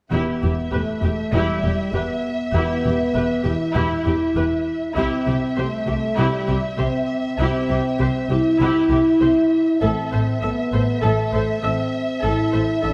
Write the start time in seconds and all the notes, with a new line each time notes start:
0.10 E1 E2 B3 E4 G4 E5
0.42 E1 E2 G4
0.72 E1 E2 A3 G4 B4
1.03 E1 E2 G4
1.33 E1 E2 G3 E4 G4
1.63 E1 E2 G4
1.92 E1 E2 B3 G4 B4
2.54 E1 E2 B3 E4 G4
2.84 E1 E2 G4
3.15 E1 E2 G4 B4
3.44 E1 E2 E4 G4
3.75 E1 E2 E4 G4
4.06 E1 E2 G4
4.36 E1 E2 G4 B4
4.95 C2 C3 C4 E4 G4 E5
5.27 C2 C3 G4
5.57 C2 C3 A3 G4 C5
5.86 C2 C3 G4
6.17 C2 C3 G3 E4 G4
6.48 C2 C3 G4
6.78 C2 C3 C4 G4 C5
7.38 C2 C3 C4 E4 G4
7.69 C2 C3 G4
7.99 C2 C3 G4 C5
8.29 C2 C3 E4 G4
8.60 C2 C3 E4 G4
8.90 C2 C3 G4
9.21 C2 C3 G4 C5
9.79 A1 A2 C4 A4 E5
10.13 A1 A2 A4 C5
10.41 A1 A2 B3 A4 E5
10.73 A1 A2 A4 C5
11.01 A1 A2 A3 A4
11.33 A1 A2 A4 C5
11.63 A1 A2 C4 A4 E5
12.23 A1 A2 E4 A4
12.54 A1 A2 A4 C5
12.82 A1 A2 D4 A4 E5